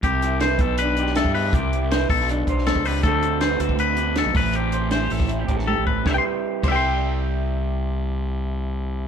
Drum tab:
CC |----------------|----------------|----------------|----------------|
HH |x-x-x-x-x-x-x-o-|x-x-x-o-x-x-x-o-|x-x-x-x-x-x-x-o-|x-x-x-o-x-x-----|
SD |----o------oo---|----o--o---oo---|----o-------o---|----o--o---o----|
T1 |----------------|----------------|----------------|------------o---|
BD |o-----o------o--|o-----o---o--o--|o------o------o-|-------o--o---o-|

CC |------x---------|----------------|
HH |----------------|----------------|
SD |o---------------|----------------|
T1 |----------------|----------------|
BD |o-----o---------|----------------|